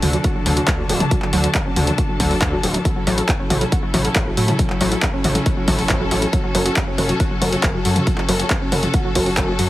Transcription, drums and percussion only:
0.02 open hi-hat, mid tom
0.13 closed hi-hat
0.24 kick, closed hi-hat
0.46 open hi-hat, mid tom
0.57 closed hi-hat
0.68 kick, clap, closed hi-hat
0.89 open hi-hat
1.00 closed hi-hat, mid tom
1.11 kick, closed hi-hat
1.22 clap
1.33 open hi-hat
1.44 closed hi-hat
1.55 kick, clap, closed hi-hat
1.76 open hi-hat, mid tom
1.87 closed hi-hat, mid tom
1.98 kick, closed hi-hat
2.20 kick, open hi-hat
2.31 open hi-hat
2.42 kick, clap, closed hi-hat
2.63 open hi-hat
2.74 closed hi-hat
2.85 kick, closed hi-hat
3.07 open hi-hat
3.18 closed hi-hat
3.29 kick, clap, closed hi-hat
3.50 open hi-hat, mid tom
3.61 closed hi-hat
3.72 kick, closed hi-hat
3.94 open hi-hat, mid tom
4.05 closed hi-hat
4.16 kick, clap, closed hi-hat
4.37 open hi-hat
4.48 closed hi-hat, mid tom
4.59 kick, closed hi-hat
4.70 clap
4.81 open hi-hat
4.92 closed hi-hat
5.03 kick, clap, closed hi-hat
5.24 open hi-hat, mid tom
5.35 closed hi-hat, mid tom
5.46 kick, closed hi-hat
5.68 kick, open hi-hat, mid tom
5.79 open hi-hat
5.89 kick, clap, closed hi-hat
6.11 open hi-hat
6.22 closed hi-hat
6.33 kick, closed hi-hat
6.55 open hi-hat
6.66 closed hi-hat
6.76 kick, clap, closed hi-hat
6.98 open hi-hat, mid tom
7.09 closed hi-hat
7.20 kick, closed hi-hat
7.42 open hi-hat, mid tom
7.53 closed hi-hat
7.63 kick, clap, closed hi-hat
7.85 open hi-hat
7.96 closed hi-hat, mid tom
8.07 kick, closed hi-hat
8.18 clap
8.29 open hi-hat
8.40 closed hi-hat
8.50 kick, clap, closed hi-hat
8.72 open hi-hat, mid tom
8.83 closed hi-hat, mid tom
8.94 kick, closed hi-hat
9.15 kick, open hi-hat
9.26 open hi-hat
9.37 kick, clap, closed hi-hat
9.59 open hi-hat

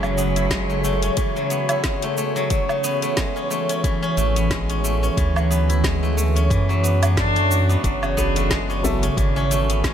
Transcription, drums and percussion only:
0.03 low woodblock, shaker
0.18 shaker
0.36 closed hi-hat, shaker
0.51 kick, snare, closed hi-hat, shaker
0.70 shaker
0.84 shaker
1.02 closed hi-hat, shaker
1.17 kick, closed hi-hat, shaker
1.36 shaker
1.50 closed hi-hat, shaker
1.69 closed hi-hat, low woodblock, shaker
1.84 kick, snare, closed hi-hat, shaker
2.02 closed hi-hat, shaker
2.17 shaker
2.36 shaker
2.50 kick, closed hi-hat, shaker
2.69 low woodblock, shaker
2.84 shaker
3.02 closed hi-hat, shaker
3.17 kick, snare, closed hi-hat, shaker
3.36 shaker
3.51 shaker
3.69 closed hi-hat, shaker
3.84 kick, closed hi-hat, shaker
4.03 shaker
4.17 closed hi-hat, shaker
4.36 closed hi-hat, shaker
4.51 kick, snare, closed hi-hat, shaker
4.70 closed hi-hat, shaker
4.85 shaker
5.03 shaker
5.17 kick, closed hi-hat, shaker
5.36 low woodblock, shaker
5.51 shaker
5.70 closed hi-hat, shaker
5.84 kick, snare, closed hi-hat, shaker
6.04 shaker
6.18 shaker
6.36 closed hi-hat, shaker
6.51 kick, closed hi-hat, shaker
6.70 shaker
6.84 closed hi-hat, shaker
7.03 closed hi-hat, low woodblock, shaker
7.17 kick, snare, closed hi-hat, shaker
7.36 closed hi-hat, shaker
7.51 shaker
7.70 shaker
7.84 kick, closed hi-hat, djembe slap, shaker
8.03 low woodblock, shaker
8.17 djembe slap, djembe bass, shaker
8.36 closed hi-hat, djembe tone, shaker
8.51 kick, snare, closed hi-hat, shaker
8.70 shaker
8.84 djembe slap, djembe tone, djembe bass, shaker
9.02 closed hi-hat, djembe tone, shaker
9.17 kick, closed hi-hat, shaker
9.37 shaker
9.51 closed hi-hat, shaker
9.70 closed hi-hat, shaker
9.84 kick, snare, closed hi-hat, shaker

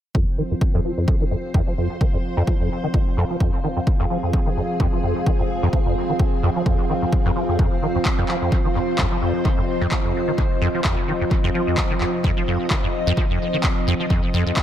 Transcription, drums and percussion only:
0.15 kick
0.61 kick
1.08 kick
1.54 kick
2.01 kick
2.47 kick
2.94 kick
3.40 kick
3.87 kick
4.33 kick
4.80 kick
5.26 kick
5.73 kick
6.19 kick
6.66 kick
7.13 kick
7.59 kick
8.05 kick, clap
8.29 clap
8.52 kick
8.98 kick, clap
9.45 kick
9.91 kick, clap
10.38 kick
10.84 kick, clap
11.31 kick
11.77 kick, clap
12.01 clap
12.24 kick
12.70 kick, clap
13.17 kick
13.63 kick, clap
14.10 kick
14.56 kick, clap

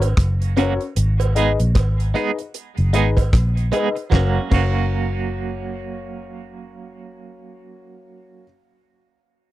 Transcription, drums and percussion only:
0.02 closed hi-hat, cowbell
0.17 kick, cross-stick, closed hi-hat
0.42 closed hi-hat
0.57 closed hi-hat, cowbell
0.81 closed hi-hat
0.96 closed hi-hat
1.20 closed hi-hat, cowbell
1.36 closed hi-hat
1.60 closed hi-hat
1.75 kick, cross-stick, closed hi-hat, cowbell
2.00 closed hi-hat
2.15 closed hi-hat
2.39 closed hi-hat
2.54 closed hi-hat
2.78 closed hi-hat
2.94 closed hi-hat
3.17 kick, closed hi-hat, cowbell
3.33 kick, cross-stick, closed hi-hat
3.57 closed hi-hat
3.72 closed hi-hat, cowbell
3.97 closed hi-hat
4.11 kick, snare, cowbell
4.51 kick, crash, cowbell

